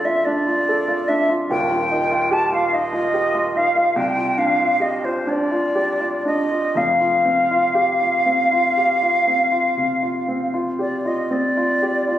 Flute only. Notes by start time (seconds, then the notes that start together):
0.05 E5
0.25 D5
1.08 E5
1.51 G5
2.33 A5
2.54 F5
2.74 D#5
3.57 F5
3.97 G5
4.38 F5
4.82 D#5
5.05 C5
5.29 D5
6.27 D#5
6.77 F5
10.80 D5
11.07 D#5
11.33 D5